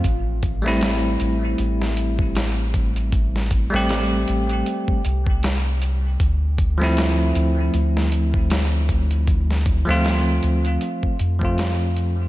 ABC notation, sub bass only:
X:1
M:4/4
L:1/16
Q:"Swing 16ths" 1/4=78
K:Dm
V:1 name="Sub bass" clef=bass
A,,,6 A,,,2 A,,,8- | A,,,3 A,,,3 A,,,2 z2 C,,6 | D,,6 D,,2 D,,8- | D,,3 D,,3 D,,2 z2 F,,6 |]